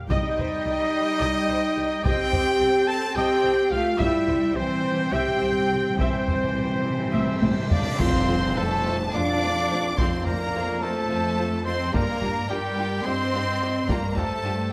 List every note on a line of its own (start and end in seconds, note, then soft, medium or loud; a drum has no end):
0.10 0.18 C2 medium
0.10 0.90 C3 medium
0.10 2.00 G3 medium
0.10 2.01 D#4 loud
0.10 2.00 D#5 medium
0.10 2.00 D#5 loud
0.10 0.36 D#5 medium
0.10 2.01 D#5 loud
0.10 3.96 G5 medium
0.10 taiko loud
0.38 0.46 C2 medium
0.38 0.46 C5 medium
0.38 taiko low medium
0.65 0.73 C2 medium
0.65 0.75 G4 medium
1.21 1.29 C2 medium
1.21 1.47 D#5 medium
1.49 1.57 C2 medium
1.49 1.58 C5 medium
1.75 1.85 C2 medium
1.75 1.83 G4 medium
2.04 2.12 C2 medium
2.04 2.86 C4 medium
2.04 2.89 G4 loud
2.04 2.30 D#5 medium
2.04 2.86 G5 loud
2.04 2.89 G5 loud
2.04 2.88 G5 loud
2.04 taiko medium
2.32 2.40 C2 medium
2.32 2.40 C5 medium
2.32 taiko low medium
2.60 2.68 C2 medium
2.60 2.68 G4 medium
2.87 3.14 C4 medium
2.87 3.16 A4 loud
2.87 3.17 A5 loud
2.87 3.16 A5 loud
3.15 3.24 C2 medium
3.15 3.71 C4 loud
3.15 3.71 G4 loud
3.15 3.42 D#5 medium
3.15 3.72 G5 loud
3.15 3.71 G5 loud
3.15 3.72 G5 loud
3.42 3.51 C2 medium
3.42 3.50 C5 medium
3.71 3.79 C2 medium
3.71 3.99 A3 medium
3.71 4.00 F4 medium
3.71 3.79 G4 medium
3.71 4.00 F5 medium
3.98 4.08 C2 loud
3.98 4.06 C3 soft
3.98 4.54 G3 medium
3.98 4.56 E4 loud
3.98 4.25 E5 medium
3.98 4.58 E5 medium
3.98 4.55 E5 medium
3.98 4.57 E5 medium
3.98 7.74 G5 medium
3.98 taiko loud
4.07 4.14 C3 soft
4.15 4.21 C3 soft
4.23 4.29 C3 soft
4.27 4.36 C2 medium
4.27 4.37 C3 soft
4.27 4.35 C5 medium
4.27 taiko low medium
4.38 4.44 C3 soft
4.45 4.51 C3 soft
4.54 4.63 C2 medium
4.54 5.13 E3 medium
4.54 5.13 C4 loud
4.54 4.62 G4 medium
4.54 5.13 C5 medium
4.54 5.12 C5 medium
4.54 5.14 C5 medium
4.59 4.67 C3 soft
4.68 4.74 C3 soft
4.75 4.82 C3 soft
4.83 4.89 C3 soft
4.91 4.97 C3 soft
4.98 5.04 C3 soft
5.05 5.11 C3 soft
5.12 5.20 C2 medium
5.12 5.18 C3 soft
5.12 5.99 C4 medium
5.12 5.99 G4 loud
5.12 5.40 E5 medium
5.12 5.99 G5 medium
5.28 5.35 C3 medium
5.36 5.42 C3 medium
5.40 5.49 C2 medium
5.40 5.50 C3 medium
5.40 5.48 C5 medium
5.52 5.57 C3 medium
5.59 5.65 C3 medium
5.66 5.78 C2 medium
5.66 5.73 C3 medium
5.70 5.78 G4 medium
5.75 5.81 C3 medium
5.82 5.89 C3 medium
5.90 5.96 C3 medium
5.98 6.06 C2 medium
5.98 6.04 C3 medium
5.98 7.71 E3 medium
5.98 7.55 C4 medium
5.98 7.67 C5 medium
5.98 6.26 E5 medium
5.98 taiko loud
5.98 cymbal swell medium
6.06 6.13 C3 medium
6.14 6.20 C3 medium
6.21 6.27 C3 medium
6.27 6.35 C2 soft
6.27 6.34 C3 medium
6.27 6.37 C5 medium
6.27 taiko low medium
6.36 6.42 C3 medium
6.43 6.50 C3 medium
6.51 6.58 C3 medium
6.56 6.64 C2 medium
6.56 6.66 C3 medium
6.56 6.64 G4 medium
6.67 6.74 C3 medium
6.75 6.81 C3 medium
6.82 6.89 C3 medium
6.90 6.96 C3 medium
6.97 7.04 C3 medium
7.05 7.12 C3 medium
7.13 7.21 C2 medium
7.13 7.19 C3 medium
7.13 7.40 E5 medium
7.13 taiko high medium
7.20 7.26 C3 medium
7.27 7.34 C3 medium
7.35 7.42 C3 medium
7.41 7.49 C2 soft
7.41 7.50 C3 medium
7.41 7.51 C5 soft
7.41 taiko high medium
7.51 7.58 C3 medium
7.59 7.64 C3 loud
7.65 7.72 C3 loud
7.70 7.78 C2 soft
7.70 7.81 C3 medium
7.70 7.98 D4 medium
7.70 7.79 G4 medium
7.70 8.02 D5 medium
7.70 7.97 F5 medium
7.70 7.97 D6 medium
7.70 taiko low medium
7.82 7.89 C3 loud
7.90 7.97 C3 medium
7.99 8.49 F2 medium
7.99 8.07 A3 medium
7.99 8.56 C4 medium
7.99 8.07 F4 medium
7.99 8.08 F4 medium
7.99 8.08 C5 medium
7.99 8.59 C5 medium
7.99 8.54 F5 medium
7.99 8.56 C6 loud
7.99 taiko loud
7.99 tam-tam medium
7.99 impact medium
8.28 8.36 A3 medium
8.28 8.36 F4 medium
8.28 8.36 C5 medium
8.28 taiko low medium
8.56 9.06 F2 medium
8.56 9.12 A3 loud
8.56 9.13 A3 medium
8.56 8.65 A3 medium
8.56 8.64 F4 medium
8.56 8.65 F4 medium
8.56 8.97 A4 loud
8.56 8.64 C5 medium
8.56 9.12 C5 medium
8.56 9.13 A5 loud
8.86 8.94 A3 medium
8.86 8.94 F4 medium
8.86 8.94 C5 medium
9.13 9.87 F2 medium
9.13 9.23 A3 medium
9.13 9.96 D4 loud
9.13 9.96 D4 medium
9.13 9.23 F4 medium
9.13 9.23 C5 medium
9.13 10.00 D5 loud
9.13 9.96 F5 loud
9.13 9.98 D6 loud
9.42 9.50 A3 medium
9.42 9.50 F4 medium
9.42 9.51 F4 medium
9.42 9.51 C5 medium
9.70 9.80 A3 medium
9.70 9.78 F4 medium
9.70 9.79 F4 medium
9.70 9.79 C5 medium
9.98 10.47 F2 medium
9.98 10.07 A3 medium
9.98 10.25 C4 medium
9.98 10.26 C4 medium
9.98 10.07 F4 medium
9.98 10.08 F4 medium
9.98 10.25 C5 medium
9.98 10.06 C5 medium
9.98 10.25 F5 medium
9.98 10.26 C6 medium
9.98 taiko loud
10.26 10.37 A3 medium
10.26 10.82 A#3 medium
10.26 10.34 F4 medium
10.26 10.37 F4 medium
10.26 10.84 A#4 medium
10.26 10.34 C5 medium
10.26 10.83 D5 medium
10.26 10.81 A#5 loud
10.26 taiko low medium
10.54 11.03 F2 medium
10.54 10.63 A3 medium
10.54 10.63 F4 medium
10.54 10.64 C5 medium
10.82 11.66 A3 medium
10.82 10.92 A3 medium
10.82 11.67 A3 medium
10.82 10.90 F4 medium
10.82 10.92 F4 medium
10.82 11.64 A4 medium
10.82 11.43 C5 medium
10.82 10.90 C5 medium
10.82 11.64 A5 medium
11.10 11.83 F2 medium
11.10 11.20 A3 medium
11.10 11.18 F4 medium
11.10 11.20 F4 medium
11.10 11.18 C5 medium
11.38 11.46 A3 medium
11.38 11.46 F4 medium
11.38 11.47 F4 medium
11.38 11.46 C5 medium
11.65 11.74 A3 medium
11.65 11.93 C4 medium
11.65 11.74 F4 medium
11.65 11.75 F4 medium
11.65 11.92 C5 medium
11.65 11.75 C5 medium
11.65 11.93 D#5 medium
11.65 11.93 C6 medium
11.93 12.43 G2 medium
11.93 12.01 G3 medium
11.93 12.49 A#3 medium
11.93 12.48 A#3 medium
11.93 12.01 D4 medium
11.93 12.02 F4 medium
11.93 12.02 G4 medium
11.93 12.48 A#4 medium
11.93 12.48 D5 medium
11.93 12.48 A#5 loud
11.93 taiko loud
12.21 12.29 G3 medium
12.21 12.30 D4 medium
12.21 12.30 F4 medium
12.21 12.30 G4 medium
12.21 taiko low medium
12.49 12.99 G2 medium
12.49 13.05 G3 medium
12.49 13.04 G3 medium
12.49 12.58 G3 medium
12.49 12.57 D4 medium
12.49 12.58 F4 medium
12.49 13.07 G4 medium
12.49 12.58 G4 medium
12.49 13.07 A#4 medium
12.49 13.06 G5 medium
12.76 12.85 G3 medium
12.76 12.84 D4 medium
12.76 12.87 F4 medium
12.76 12.86 G4 medium
13.04 13.79 G2 medium
13.04 13.14 G3 medium
13.04 13.86 C4 medium
13.04 13.88 C4 medium
13.04 13.13 D4 medium
13.04 13.14 F4 medium
13.04 13.14 G4 medium
13.04 13.89 C5 medium
13.04 13.90 D#5 medium
13.04 13.88 C6 loud
13.33 13.41 G3 medium
13.33 13.41 D4 medium
13.33 13.43 F4 medium
13.33 13.43 G4 medium
13.61 13.69 G3 medium
13.61 13.69 D4 medium
13.61 13.70 F4 medium
13.61 13.69 G4 medium
13.88 14.37 G2 medium
13.88 13.96 G3 medium
13.88 14.16 A#3 medium
13.88 13.96 D4 medium
13.88 13.97 F4 medium
13.88 13.98 G4 medium
13.88 14.16 A#4 medium
13.88 14.19 D5 medium
13.88 14.17 A#5 medium
13.88 taiko loud
14.16 14.24 G3 medium
14.16 14.71 A3 medium
14.16 14.55 A3 medium
14.16 14.24 D4 medium
14.16 14.25 F4 medium
14.16 14.25 G4 medium
14.16 14.72 A4 medium
14.16 14.72 C5 medium
14.16 14.72 A5 loud
14.16 taiko low soft
14.43 14.72 G2 medium
14.43 14.51 G3 medium
14.43 14.52 D4 medium
14.43 14.53 F4 medium
14.43 14.53 G4 medium